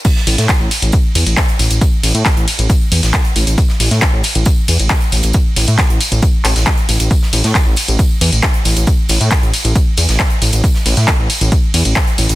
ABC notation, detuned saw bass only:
X:1
M:4/4
L:1/16
Q:1/4=136
K:none
V:1 name="Detuned saw bass" clef=bass
z2 A,,, A,, z A,,, z A,,, z2 E,, A,,, z2 A,,, A,,, | z2 A,,, A,, z A,,, z A,,, z2 E,, A,,, z2 A,,, A,,, | z2 A,,, A,, z A,,, z A,,, z2 E,, A,,, z2 A,,, A,,, | z2 A,,, A,, z A,,, z A,,, z2 A,,, A,,, z2 A,,, A,,, |
z2 A,,, A,, z A,,, z A,,, z2 E,, A,,, z2 A,,, A,,, | z2 A,,, A,, z A,,, z A,,, z2 E,, A,,, z2 A,,, A,,, | z2 A,,, A,, z A,,, z A,,, z2 E,, A,,, z2 A,,, A,,, |]